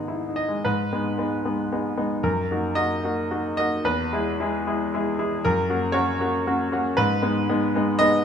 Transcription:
0.00 0.61 G#2 soft
0.00 0.67 D#3 soft
0.00 0.67 B3 soft
0.00 0.29 D#4 soft
0.00 0.37 G#4 medium
0.08 0.27 E4 soft
0.29 0.58 D#4 soft
0.36 0.64 D#5 medium
0.48 0.65 G#3 soft
0.65 0.91 G#2 medium
0.65 2.24 B4 medium
0.93 1.16 G#3 soft
0.93 1.16 B3 soft
0.93 1.16 D#4 soft
1.18 1.42 G#3 soft
1.18 1.42 B3 soft
1.18 1.42 D#4 soft
1.45 1.68 G#3 soft
1.45 1.69 B3 soft
1.45 1.69 D#4 soft
1.72 1.95 G#3 soft
1.72 1.95 B3 soft
1.72 1.95 D#4 soft
1.97 2.21 G#3 soft
1.97 2.21 B3 soft
1.97 2.21 D#4 soft
2.23 2.49 F#2 medium
2.23 2.76 A#4 medium
2.51 2.74 A#3 soft
2.51 2.74 D#4 soft
2.51 2.75 F#4 soft
2.75 3.00 A#3 soft
2.75 3.01 D#4 soft
2.75 3.00 F#4 soft
2.75 3.29 D#5 medium
3.04 3.27 A#3 soft
3.04 3.27 D#4 soft
3.04 3.28 F#4 soft
3.31 3.54 A#3 soft
3.31 3.55 D#4 soft
3.31 3.54 F#4 soft
3.57 3.81 A#3 soft
3.57 3.82 D#4 soft
3.57 3.82 F#4 soft
3.57 3.83 D#5 medium
3.85 4.09 E2 medium
3.85 5.41 B4 medium
4.13 4.35 G#3 soft
4.13 4.35 E4 soft
4.13 4.35 G#4 soft
4.40 4.62 G#3 soft
4.40 4.62 E4 soft
4.40 4.62 G#4 soft
4.67 4.88 G#3 soft
4.67 4.88 E4 soft
4.67 4.89 G#4 soft
4.94 5.15 G#3 soft
4.94 5.15 E4 soft
4.94 5.15 G#4 soft
5.18 5.40 G#3 soft
5.18 5.40 E4 soft
5.18 5.40 G#4 soft
5.45 5.68 F#2 medium
5.45 5.93 A#4 medium
5.69 5.91 A#3 soft
5.69 5.91 C#4 soft
5.69 5.91 F#4 soft
5.92 6.15 A#3 soft
5.92 6.16 C#4 soft
5.92 6.16 F#4 medium
5.92 6.44 C#5 medium
6.19 6.42 A#3 soft
6.19 6.42 C#4 soft
6.19 6.43 F#4 medium
6.47 6.69 A#3 soft
6.47 6.69 C#4 soft
6.47 6.69 F#4 medium
6.72 6.94 A#3 soft
6.72 6.94 C#4 medium
6.72 6.95 F#4 medium
6.97 7.22 G#2 medium
6.97 8.00 B4 medium
7.22 7.45 G#3 soft
7.22 7.45 B3 soft
7.22 7.46 D#4 medium
7.49 7.72 G#3 medium
7.49 7.72 B3 medium
7.49 7.72 D#4 medium
7.75 7.98 G#3 medium
7.75 7.99 B3 soft
7.75 7.99 D#4 medium
7.99 8.23 G#3 soft
7.99 8.24 B3 medium
7.99 8.24 D#4 medium
7.99 8.24 D#5 loud

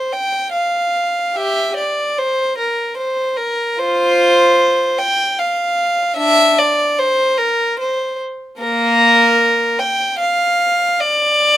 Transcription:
0.00 0.12 C5 medium
0.13 0.53 G5 medium
0.52 1.33 F5 medium
1.35 1.73 G4 medium
1.35 1.77 E5 medium
1.76 2.16 D5 medium
2.18 2.58 C5 medium
2.58 2.97 A#4 medium
2.97 3.37 C5 medium
3.36 3.77 A#4 medium
3.79 4.97 F4 medium
3.79 5.01 C5 medium
4.99 5.39 G5 medium
5.39 6.18 F5 medium
6.16 6.55 D4 medium
6.16 6.57 E5 loud
6.59 6.99 D5 medium
6.99 7.39 C5 medium
7.37 7.79 A#4 medium
7.79 8.19 C5 medium
8.59 9.76 A#3 medium
8.59 9.76 A#4 loud
9.79 10.19 G5 medium
10.19 10.97 F5 medium
11.00 11.57 D5 loud

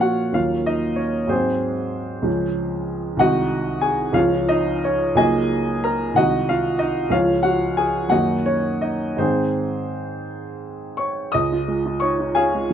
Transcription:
0.00 0.30 A#2 soft
0.00 0.31 F3 soft
0.00 0.31 A#3 soft
0.00 0.31 C#4 soft
0.00 0.35 F4 medium
0.00 0.32 F#4 medium
0.00 0.37 C#5 medium
0.00 0.34 F5 medium
0.00 0.34 F#5 medium
0.32 1.27 D#2 soft
0.32 1.27 F#3 soft
0.32 1.28 A#3 soft
0.32 0.96 C#4 soft
0.32 0.65 F4 soft
0.32 0.67 F5 medium
0.66 0.97 D#4 soft
0.66 0.99 D#5 medium
0.96 1.28 C#4 soft
0.96 1.30 C#5 medium
1.27 2.21 G#2 soft
1.27 2.22 F#3 soft
1.27 2.22 G#3 soft
1.27 2.84 C4 soft
1.27 2.84 G#4 soft
1.27 2.88 C5 medium
2.22 3.15 C#2 soft
2.22 3.15 F3 soft
2.22 3.16 G#3 soft
2.22 3.17 C#4 soft
3.17 4.11 C2 soft
3.17 4.11 D#3 soft
3.17 4.12 G#3 soft
3.17 4.13 D#4 soft
3.17 3.79 D#5 medium
3.17 3.83 F#5 medium
3.21 3.79 F#4 medium
3.81 4.13 G#4 medium
3.81 4.15 G#5 medium
4.13 5.13 C#2 soft
4.13 5.15 F3 soft
4.13 5.15 G#3 soft
4.13 4.84 C#4 soft
4.13 4.47 F4 medium
4.13 4.47 C#5 medium
4.13 4.48 F5 medium
4.49 4.82 D#4 medium
4.49 4.84 D#5 medium
4.84 5.17 C#4 medium
4.84 5.19 C#5 medium
5.15 6.12 C#2 medium
5.15 6.12 F#3 soft
5.15 6.12 A#3 soft
5.15 6.13 D#4 soft
5.15 5.80 G#4 medium
5.15 5.80 D#5 medium
5.15 5.83 G#5 medium
5.84 6.14 A#4 medium
5.84 6.16 A#5 medium
6.14 7.08 C2 soft
6.14 7.09 D#3 soft
6.14 7.09 G#3 soft
6.14 6.79 D#4 soft
6.14 6.47 F#4 medium
6.14 6.46 D#5 medium
6.14 6.48 F#5 medium
6.49 6.79 F4 medium
6.49 6.81 F5 medium
6.79 7.10 D#4 medium
6.79 7.12 D#5 medium
7.10 8.08 C#2 soft
7.10 8.08 F3 soft
7.10 8.08 G#3 soft
7.10 8.09 C#4 soft
7.10 7.43 F4 medium
7.10 7.43 C#5 medium
7.10 7.45 F5 medium
7.43 7.76 F#4 medium
7.43 7.77 F#5 medium
7.77 8.10 G#4 medium
7.77 8.12 G#5 medium
8.09 9.13 F#2 soft
8.09 9.13 D#3 soft
8.09 9.14 A#3 soft
8.09 8.81 D#4 soft
8.09 8.44 F#4 soft
8.09 8.43 D#5 medium
8.09 8.45 F#5 medium
8.46 8.79 C#4 soft
8.46 8.81 C#5 medium
8.81 9.15 D#4 soft
8.81 9.17 D#5 medium
9.17 11.30 G#2 soft
9.17 11.30 D#3 soft
9.17 11.31 G#3 soft
9.17 10.23 C4 soft
9.17 11.31 D#4 soft
9.17 10.23 G#4 soft
9.17 10.26 C5 medium
10.97 11.32 C#5 soft
10.97 11.33 C#6 medium
11.32 12.73 C#2 medium
11.32 11.97 D#5 medium
11.32 12.00 D#6 medium
11.52 11.78 F4 soft
11.68 11.95 G#3 soft
11.86 12.12 F4 soft
12.00 12.19 D#4 soft
12.00 12.33 C#5 medium
12.00 12.34 C#6 medium
12.20 12.46 F4 soft
12.35 12.63 C#4 soft
12.35 12.73 G#4 medium
12.35 12.73 F5 medium
12.35 12.73 G#5 medium
12.54 12.73 G#3 soft

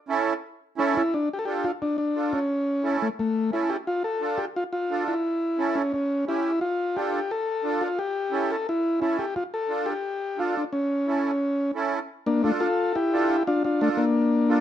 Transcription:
0.09 0.33 C#4 medium
0.09 0.33 E4 medium
0.09 0.34 A4 loud
0.78 1.02 C#4 loud
0.78 0.95 C#4 medium
0.78 1.02 E4 medium
0.78 1.02 A4 loud
0.97 1.14 E4 medium
1.14 1.29 D4 medium
1.33 1.39 G4 loud
1.39 1.45 A4 medium
1.45 1.70 D4 medium
1.45 1.71 F4 medium
1.45 1.65 G4 medium
1.45 1.71 A4 medium
1.64 1.72 F4 medium
1.82 1.97 D4 medium
1.98 2.33 D4 medium
2.15 2.39 D4 medium
2.15 2.39 F4 medium
2.15 2.40 A4 medium
2.33 2.97 C#4 medium
2.84 3.08 C#4 medium
2.84 3.08 E4 medium
2.84 3.08 A4 medium
3.02 3.09 A3 medium
3.19 3.51 A3 medium
3.52 3.76 C#4 medium
3.52 3.76 E4 medium
3.52 3.70 E4 medium
3.52 3.77 A4 medium
3.70 3.77 G4 medium
3.87 4.03 F4 loud
4.04 4.39 A4 loud
4.21 4.45 D4 medium
4.21 4.45 F4 medium
4.21 4.45 A4 medium
4.38 4.46 G4 medium
4.56 4.64 F4 loud
4.73 5.04 F4 medium
4.90 5.14 D4 medium
4.90 5.14 F4 medium
4.90 5.14 A4 medium
5.08 5.78 E4 medium
5.58 5.82 C#4 medium
5.58 5.82 E4 medium
5.58 5.83 A4 medium
5.75 5.92 C#4 medium
5.94 6.25 C#4 medium
6.27 6.51 C#4 medium
6.27 6.51 E4 medium
6.27 6.60 E4 medium
6.27 6.51 G4 medium
6.61 6.96 F4 loud
6.96 7.20 D4 medium
6.96 7.20 F4 medium
6.96 7.31 G4 medium
6.96 7.20 A4 medium
7.31 7.83 A4 medium
7.64 7.88 D4 medium
7.64 7.88 F4 medium
7.64 7.89 A4 medium
7.81 7.99 F4 medium
7.99 8.51 G4 loud
8.31 8.56 C#4 medium
8.31 8.56 E4 medium
8.31 8.56 A4 medium
8.52 8.67 A4 medium
8.69 9.00 E4 medium
9.00 9.25 C#4 medium
9.00 9.25 E4 medium
9.00 9.17 E4 medium
9.00 9.25 A4 medium
9.19 9.35 G4 medium
9.36 9.44 F4 medium
9.54 9.88 A4 medium
9.69 9.93 D4 medium
9.69 9.93 F4 medium
9.69 9.94 A4 medium
9.86 10.39 G4 medium
10.37 10.62 D4 medium
10.37 10.62 F4 medium
10.37 10.55 F4 medium
10.37 10.62 A4 medium
10.57 10.64 D4 medium
10.73 11.71 C#4 medium
11.07 11.31 C#4 medium
11.07 11.31 E4 medium
11.07 11.31 A4 medium
11.75 11.99 C#4 medium
11.75 11.99 E4 medium
11.75 11.99 A4 medium
12.26 12.43 A#3 medium
12.26 12.42 D4 medium
12.43 12.52 A3 medium
12.43 12.67 D4 medium
12.43 12.51 D4 medium
12.43 12.68 F4 medium
12.43 12.68 A4 medium
12.60 12.93 F4 medium
12.60 12.96 A4 loud
12.95 13.43 E4 medium
12.95 13.43 G4 loud
13.12 13.36 D4 medium
13.12 13.37 F4 medium
13.12 13.37 A4 medium
13.47 13.63 D4 medium
13.47 13.63 F4 loud
13.64 13.80 D4 medium
13.64 13.82 F4 medium
13.81 13.89 A3 medium
13.81 14.05 D4 medium
13.81 13.89 D4 medium
13.81 14.05 F4 medium
13.81 14.05 A4 medium
13.97 14.60 A#3 medium
13.97 14.60 D4 medium
14.49 14.60 D4 medium
14.49 14.60 F4 medium
14.49 14.60 A4 medium

